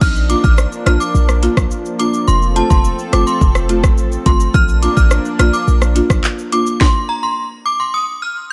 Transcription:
0.01 0.35 A#1 loud
0.01 6.77 F3 medium
0.01 2.26 A#3 medium
0.01 2.26 D4 medium
0.01 0.13 F6 medium
0.01 kick loud
0.01 crash loud
0.01 shaker medium
0.16 shaker soft
0.29 0.41 A#3 medium
0.29 0.41 D4 medium
0.29 0.41 F4 medium
0.29 0.41 D6 medium
0.29 closed hi-hat medium
0.29 shaker medium
0.44 0.66 A1 medium
0.44 0.55 F6 medium
0.44 kick loud
0.44 shaker medium
0.58 cross-stick medium
0.58 shaker medium
0.72 shaker soft
0.86 0.97 A#1 loud
0.86 0.97 A#3 medium
0.86 0.98 D4 medium
0.86 0.98 F4 medium
0.86 0.98 F6 medium
0.86 cross-stick medium
0.86 closed hi-hat medium
0.86 shaker medium
1.00 1.12 D6 medium
1.00 shaker medium
1.14 1.48 A#1 loud
1.14 shaker medium
1.29 cross-stick medium
1.29 shaker medium
1.42 1.54 A#3 medium
1.42 1.54 D4 medium
1.42 1.54 F4 loud
1.42 closed hi-hat medium
1.42 shaker medium
1.57 1.68 A#1 medium
1.57 kick medium
1.57 cross-stick loud
1.57 shaker medium
1.71 shaker medium
1.85 shaker medium
1.99 2.11 A#3 medium
1.99 2.11 D4 medium
1.99 2.11 F4 medium
1.99 2.11 D6 medium
1.99 closed hi-hat medium
1.99 shaker medium
2.14 shaker medium
2.28 2.61 F1 loud
2.28 4.52 C4 medium
2.28 4.52 A4 medium
2.28 2.39 C6 medium
2.28 shaker medium
2.42 shaker soft
2.56 2.67 A3 medium
2.56 2.67 C4 medium
2.56 2.68 F4 medium
2.56 2.67 A5 medium
2.56 closed hi-hat medium
2.56 shaker medium
2.70 2.93 F1 medium
2.70 2.82 C6 medium
2.70 kick loud
2.70 shaker medium
2.84 shaker medium
2.99 shaker medium
3.12 3.24 G1 medium
3.12 3.24 A3 medium
3.12 3.24 C4 medium
3.12 3.24 F4 medium
3.12 3.24 D6 medium
3.12 cross-stick medium
3.12 closed hi-hat medium
3.12 shaker medium
3.27 3.38 C6 medium
3.27 shaker medium
3.41 3.85 F1 medium
3.41 kick loud
3.41 shaker medium
3.55 cross-stick medium
3.55 shaker medium
3.69 3.80 A3 medium
3.69 3.81 C4 medium
3.69 3.81 F4 loud
3.69 closed hi-hat medium
3.69 shaker medium
3.84 4.17 A1 loud
3.84 kick loud
3.84 cross-stick loud
3.84 shaker medium
3.98 shaker medium
4.12 shaker soft
4.26 4.48 G1 loud
4.26 4.37 A3 medium
4.26 4.37 C4 medium
4.26 4.37 F4 medium
4.26 4.37 C6 medium
4.26 kick loud
4.26 closed hi-hat medium
4.26 shaker medium
4.40 shaker medium
4.54 4.88 A#1 loud
4.54 6.78 A#3 medium
4.54 6.78 D4 medium
4.54 4.66 F6 loud
4.54 kick loud
4.54 shaker medium
4.69 shaker soft
4.82 4.94 A#3 medium
4.82 4.94 D4 medium
4.82 4.94 F4 medium
4.82 4.94 D6 medium
4.82 closed hi-hat medium
4.82 shaker medium
4.97 5.19 A1 medium
4.97 5.08 F6 medium
4.97 kick medium
4.97 shaker medium
5.11 cross-stick medium
5.11 shaker medium
5.25 shaker soft
5.39 5.50 A#1 medium
5.39 5.50 A#3 medium
5.39 5.50 D4 medium
5.39 5.51 F4 medium
5.39 5.50 F6 medium
5.39 cross-stick medium
5.39 closed hi-hat medium
5.39 shaker medium
5.53 5.65 D6 medium
5.53 shaker medium
5.68 6.01 A#1 loud
5.68 shaker medium
5.82 cross-stick medium
5.82 shaker medium
5.95 6.07 A#3 medium
5.95 6.07 D4 medium
5.95 6.07 F4 loud
5.95 closed hi-hat medium
5.95 shaker medium
6.10 6.21 A#1 loud
6.10 kick loud
6.10 cross-stick loud
6.10 shaker medium
6.24 clap medium
6.24 shaker medium
6.38 shaker soft
6.52 6.63 A#3 medium
6.52 6.64 D4 medium
6.52 6.64 F4 medium
6.52 6.64 D6 medium
6.52 closed hi-hat medium
6.52 shaker medium
6.66 shaker medium
6.81 6.92 C6 medium
6.81 kick loud
6.81 snare medium
7.09 7.20 A#5 medium
7.23 7.34 C6 medium
7.66 7.77 D6 medium
7.80 7.91 C6 medium
7.94 8.05 D#6 medium
8.22 8.34 F6 medium

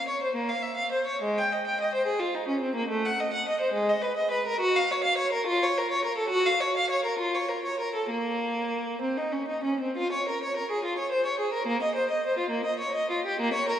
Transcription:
0.08 0.21 C#5 soft
0.22 0.35 C5 soft
0.35 0.48 A#3 soft
0.49 0.62 F5 medium
0.63 0.76 E5 medium
0.77 0.91 F5 medium
0.92 1.06 C5 medium
1.07 1.21 C#5 medium
1.22 1.35 G#3 medium
1.38 1.51 G5 medium
1.52 1.65 D#5 medium
1.67 1.79 G5 medium
1.81 1.92 D#5 medium
1.95 2.06 C5 medium
2.06 2.19 G#4 medium
2.20 2.33 F4 medium
2.35 2.47 D#4 medium
2.48 2.60 C#4 medium
2.61 2.74 C4 soft
2.75 2.88 A#3 medium
2.89 3.02 A3 medium
3.05 3.17 F#5 medium
3.20 3.32 D#5 medium
3.33 3.45 F#5 medium
3.49 3.60 D#5 medium
3.60 3.73 C5 medium
3.73 3.86 G#3 medium
3.89 4.02 D#5 medium
4.02 4.16 B4 medium
4.17 4.31 D#5 medium
4.31 4.45 B4 medium
4.47 4.61 A#4 medium
4.60 4.75 F#4 medium
4.76 4.90 F5 medium
4.91 5.05 C#5 medium
5.04 5.18 F5 medium
5.18 5.32 C#5 medium
5.32 5.46 A#4 medium
5.47 5.60 F4 medium
5.63 5.76 C#5 medium
5.77 5.90 A#4 medium
5.91 6.04 C#5 medium
6.05 6.18 A#4 medium
6.17 6.31 A4 medium
6.30 6.44 F#4 medium
6.46 6.60 F5 medium
6.60 6.74 C#5 medium
6.77 6.90 F5 medium
6.90 7.04 C#5 medium
7.05 7.18 A#4 medium
7.19 7.33 F4 medium
7.35 7.48 C#5 medium
7.49 7.63 A#4 medium
7.65 7.79 C#5 medium
7.80 7.94 A#4 medium
7.95 8.09 A4 medium
8.10 8.99 A#3 medium
9.01 9.16 C4 medium
9.17 9.32 D#4 soft
9.32 9.47 C#4 soft
9.48 9.64 D#4 soft
9.64 9.80 C#4 soft
9.80 9.96 C4 soft
9.97 10.11 F4 medium
10.12 10.26 C#5 medium
10.29 10.42 A#4 medium
10.44 10.57 C#5 medium
10.57 10.70 A#4 medium
10.71 10.84 G#4 medium
10.85 10.98 F4 medium
10.98 11.12 C#5 medium
11.12 11.26 C5 medium
11.26 11.40 C#5 medium
11.40 11.53 G#4 medium
11.53 11.67 A#4 medium
11.67 11.81 A#3 medium
11.82 11.96 D#5 medium
11.95 12.09 C5 medium
12.11 12.24 D#5 medium
12.27 12.39 C5 medium
12.38 12.52 F4 medium
12.50 12.65 A#3 medium
12.65 12.80 D#5 medium
12.79 12.94 C#5 medium
12.95 13.10 D#5 medium
13.10 13.25 F4 medium
13.26 13.40 G4 medium
13.40 13.54 A#3 medium
13.53 13.68 C#5 medium
13.68 13.79 A#4 medium

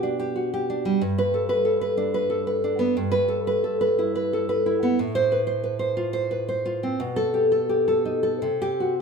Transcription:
0.00 0.97 B2 medium
0.00 0.69 D4 medium
0.00 0.34 F#4 medium
0.00 0.18 G4 medium
0.19 0.52 G4 medium
0.36 1.01 F#4 medium
0.54 1.02 G4 medium
0.70 1.02 D4 medium
0.85 1.01 G3 medium
1.01 2.91 G2 medium
1.18 1.43 B4 medium
1.34 1.64 A4 medium
1.49 1.80 B4 medium
1.65 2.29 A4 medium
1.81 2.13 B4 medium
1.97 2.63 D4 medium
2.14 2.46 B4 medium
2.30 2.95 A4 medium
2.47 2.95 B4 medium
2.64 2.96 D4 medium
2.79 2.95 B3 medium
2.97 4.94 G2 medium
3.12 3.38 B4 loud
3.28 3.63 A4 medium
3.47 3.80 B4 medium
3.64 4.32 A4 medium
3.81 4.14 B4 medium
3.99 4.65 E4 medium
4.15 4.48 B4 medium
4.33 4.99 A4 medium
4.49 4.98 B4 medium
4.66 4.98 E4 medium
4.83 4.98 B3 medium
4.99 6.96 A2 medium
5.15 5.41 C5 loud
5.32 5.62 B4 medium
5.47 5.78 C5 medium
5.64 6.30 B4 medium
5.79 6.12 C5 medium
5.97 6.64 F4 medium
6.13 6.47 C5 medium
6.31 6.99 B4 medium
6.48 7.00 C5 medium
6.66 7.00 F4 medium
6.83 7.00 C4 medium
7.00 8.39 B2 medium
7.16 7.44 A4 loud
7.34 7.68 G4 medium
7.52 7.87 A4 medium
7.69 8.43 G4 medium
7.88 8.22 A4 medium
8.05 8.43 D#4 medium
8.23 8.42 A4 medium
8.42 9.01 C3 medium
8.62 8.93 G4 medium
8.80 9.01 F#4 medium

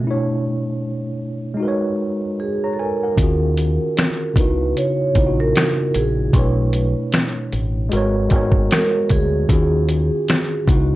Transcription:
0.00 1.54 B2 medium
0.00 1.56 A3 medium
0.00 0.11 C#4 medium
0.07 1.61 D4 medium
0.07 1.59 E4 medium
0.07 1.61 C#5 medium
1.54 3.12 G#3 medium
1.54 3.13 D#4 medium
1.60 3.14 F#4 medium
1.60 2.38 A#4 medium
1.65 2.40 B4 medium
1.65 2.41 C#5 medium
2.40 2.71 G#4 medium
2.64 2.78 C#5 soft
2.64 2.78 A#5 medium
2.73 2.79 A4 medium
2.79 4.41 A#4 medium
2.79 3.02 B4 soft
2.79 3.01 G#5 medium
3.03 3.41 A#4 medium
3.03 3.40 F#5 medium
3.16 3.77 D#2 medium
3.16 4.35 D#3 medium
3.16 4.36 C#4 medium
3.16 4.37 F4 medium
3.16 kick medium
3.16 closed hi-hat medium
3.21 4.38 F#4 medium
3.21 4.39 G#4 medium
3.57 closed hi-hat medium
3.97 finger snap medium
3.97 snare loud
3.97 closed hi-hat medium
4.34 4.72 C#2 medium
4.34 5.01 C#3 medium
4.34 5.02 B3 medium
4.34 5.03 D#4 medium
4.34 kick loud
4.34 closed hi-hat medium
4.38 5.04 E4 medium
4.38 5.05 F#4 medium
4.38 4.77 B4 medium
4.77 5.36 C#5 medium
4.77 closed hi-hat medium
5.13 5.52 A#1 medium
5.13 6.08 C#3 medium
5.13 6.09 B3 medium
5.13 6.10 D#4 medium
5.13 kick medium
5.13 closed hi-hat medium
5.18 6.11 E4 medium
5.18 5.25 F4 medium
5.26 6.15 F#4 medium
5.40 5.96 A#4 medium
5.56 finger snap medium
5.56 snare loud
5.56 closed hi-hat medium
5.94 6.31 A#1 medium
5.94 6.31 G#4 medium
5.94 closed hi-hat medium
6.32 6.93 B1 loud
6.32 7.55 B2 medium
6.32 7.56 A3 medium
6.32 7.57 D4 medium
6.32 7.09 B4 medium
6.32 kick medium
6.32 closed hi-hat medium
6.37 7.58 E4 medium
6.37 7.58 C#5 medium
6.73 closed hi-hat medium
7.12 finger snap medium
7.12 snare loud
7.12 closed hi-hat medium
7.53 7.89 A1 medium
7.53 closed hi-hat medium
7.89 8.28 G#1 medium
7.89 8.23 G#3 medium
7.89 8.24 F#4 medium
7.89 8.25 A#4 medium
7.89 closed hi-hat medium
7.95 8.26 B4 medium
7.95 8.27 C#5 loud
8.29 8.67 G#1 medium
8.29 9.24 G#3 medium
8.29 9.25 F#4 medium
8.29 9.25 A#4 medium
8.29 kick medium
8.29 closed hi-hat medium
8.34 9.26 B3 medium
8.34 9.27 C#5 medium
8.52 kick medium
8.71 9.11 A#4 loud
8.71 finger snap medium
8.71 snare loud
8.71 closed hi-hat medium
9.09 9.46 D2 medium
9.09 10.65 G#4 medium
9.09 kick medium
9.09 closed hi-hat medium
9.47 10.09 D#2 loud
9.47 10.66 D#3 medium
9.47 10.67 C#4 medium
9.47 10.68 F4 medium
9.47 kick medium
9.47 closed hi-hat medium
9.52 10.69 F#4 medium
9.52 10.70 G#4 medium
9.89 closed hi-hat medium
10.28 finger snap medium
10.28 snare loud
10.28 closed hi-hat medium
10.66 10.96 C#2 medium
10.66 10.96 C#3 medium
10.66 10.96 B3 medium
10.66 10.96 D#4 medium
10.66 10.87 F#4 medium
10.66 kick loud
10.66 closed hi-hat medium
10.71 10.96 E4 medium
10.71 10.96 F#4 medium

